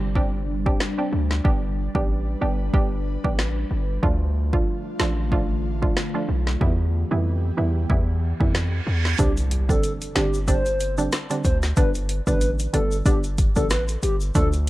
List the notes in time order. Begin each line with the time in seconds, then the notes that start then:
Already playing: G1 C3 G3 C4 D4 G4
0.15 G3 C4 D4 G4, kick
0.66 G3 C4 D4 G4, kick
0.80 cross-stick, snare
0.98 G3 C4 D4 G4
1.13 D2
1.31 snare
1.44 G1 G3 B3 D4 G4 B4, kick
1.95 A1 G3 B3 D4 G4, kick
2.41 G1 G3 B3 D4 G4
2.73 G1 G3 B3 D4 G4, kick
3.24 A1 G3 B3 D4 G4, kick
3.39 cross-stick, snare
3.71 G1
4.03 D2 D3 F3 A3 D4 F4, kick
4.53 F3 A3 D4 F4, kick
4.99 A1 F3 A3 D4 F4, snare
5.32 F3 A3 D4 F4, kick
5.82 F3 A3 D4 F4, kick
5.97 cross-stick, snare
6.14 F3 A3 D4 F4
6.29 B1
6.47 snare
6.61 E2 E3 G3 B3 E4 G4, kick
7.11 F2 E3 G3 B3 E4
7.57 E2 E3 G3 B3 E4
7.90 E2 E3 G3 B3 E4, kick, reverse cymbal
8.40 F2 E3 G3 B3 E4, kick
8.55 cross-stick, snare
8.87 E2
9.05 snare
9.18 C2 D3 G3 C4 D4 G4, kick, closed hi-hat, impact, shaker
9.37 closed hi-hat, shaker
9.51 closed hi-hat
9.69 D3 G3 C4 D4 A4, kick, shaker
9.83 closed hi-hat, shaker
10.02 closed hi-hat, shaker
10.15 G1 D3 G3 C4 D4 G4, snare, closed hi-hat
10.34 shaker
10.48 D3 G3 C4 D4 C5, kick, closed hi-hat, shaker
10.66 closed hi-hat, shaker
10.80 closed hi-hat, shaker
10.98 D3 G3 C4 D4, shaker
11.12 cross-stick, snare, closed hi-hat, shaker
11.30 D3 G3 C4 D4, closed hi-hat, shaker
11.44 D2 C5, kick, closed hi-hat, shaker
11.63 snare, shaker
11.77 G1 D3 G3 B3 D4 B4, kick, closed hi-hat, shaker
11.95 closed hi-hat, shaker
12.09 closed hi-hat
12.27 A1 D3 G3 B3 D4 B4, kick, shaker
12.41 closed hi-hat, shaker
12.59 closed hi-hat, shaker
12.73 G1 D3 G3 B3 D4 A4, closed hi-hat
12.92 shaker
13.06 G1 D3 G3 B3 D4 G4, kick, closed hi-hat, shaker
13.24 closed hi-hat, shaker
13.38 kick, closed hi-hat, shaker
13.56 A1 D3 G3 B3 D4 A4, kick, shaker
13.70 B4, cross-stick, snare, closed hi-hat, shaker
13.88 closed hi-hat, shaker
14.03 G1 G4, closed hi-hat, shaker
14.21 shaker
14.35 D2 D3 F3 A3 D4 F4 A4, kick, closed hi-hat, shaker
14.53 closed hi-hat, shaker